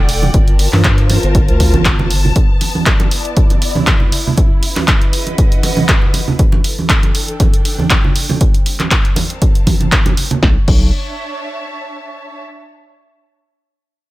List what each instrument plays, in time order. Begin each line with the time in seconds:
Already playing: analog synth bass E1, string section A4 D5 F#5 G5
0.09 open hi-hat
0.22 muted conga, low conga
0.34 analog synth bass G1, string section F4, kick, closed hi-hat
0.40 string section A#4
0.48 string section A5, closed hi-hat
0.53 string section C5
0.59 open hi-hat
0.73 analog synth bass G2, clap, muted conga, high conga
0.84 kick, clap, closed hi-hat
0.98 closed hi-hat
1.10 open hi-hat, muted conga
1.23 analog synth bass G1, closed hi-hat
1.35 kick, closed hi-hat
1.48 analog synth bass D2, closed hi-hat
1.60 kick, open hi-hat, muted conga
1.74 analog synth bass G1, closed hi-hat, high conga, low conga
1.85 kick, clap, closed hi-hat
1.99 muted conga, low conga
2.10 open hi-hat
2.25 low conga
2.36 string section B3, kick, closed hi-hat
2.61 open hi-hat, muted conga
2.71 string section E4, high conga
2.79 string section D5
2.86 kick, clap, closed hi-hat
3.00 closed hi-hat, muted conga
3.11 open hi-hat
3.25 closed hi-hat
3.37 kick, closed hi-hat
3.50 closed hi-hat, muted conga
3.62 open hi-hat
3.75 high conga, low conga
3.87 kick, clap, closed hi-hat, muted conga
4.00 low conga
4.12 open hi-hat
4.27 low conga
4.37 string section C#3, kick, closed hi-hat, muted conga
4.63 open hi-hat
4.70 string section B4
4.76 clap, muted conga, high conga
4.88 kick, clap, closed hi-hat
5.02 string section D#5, closed hi-hat
5.13 open hi-hat
5.27 string section F#5, closed hi-hat, muted conga
5.38 kick, closed hi-hat
5.52 closed hi-hat
5.63 open hi-hat, muted conga
5.77 high conga, low conga
5.89 kick, clap, closed hi-hat
6.02 low conga
6.14 open hi-hat, muted conga
6.28 low conga
6.39 string section E3, kick, closed hi-hat
6.52 string section A4, muted conga
6.64 open hi-hat
6.72 string section D4
6.79 high conga
6.89 string section G5, kick, clap, closed hi-hat
7.03 closed hi-hat, muted conga
7.15 open hi-hat
7.28 closed hi-hat
7.40 kick, closed hi-hat, muted conga
7.54 closed hi-hat
7.65 open hi-hat
7.78 high conga, low conga
7.90 kick, clap, closed hi-hat, muted conga
8.04 low conga
8.16 open hi-hat
8.29 muted conga, low conga
8.41 string section G3, kick, closed hi-hat
8.48 string section C4
8.54 closed hi-hat
8.66 open hi-hat
8.80 string section F5, clap, closed hi-hat, muted conga, high conga
8.91 kick, clap, closed hi-hat
8.97 string section A#4 A5
9.05 closed hi-hat
9.16 open hi-hat, muted conga, high conga
9.30 closed hi-hat
9.42 kick, closed hi-hat
9.55 closed hi-hat
9.67 kick, open hi-hat, muted conga, high conga
9.80 closed hi-hat, high conga, low conga
9.92 kick, clap, closed hi-hat
10.06 closed hi-hat, muted conga, low conga
10.17 open hi-hat
10.31 closed hi-hat, low conga
10.43 analog synth bass B1, string section D4, kick, snare
10.51 string section C#5
10.58 string section E5
10.65 analog synth bass B1, string section A5, kick, crash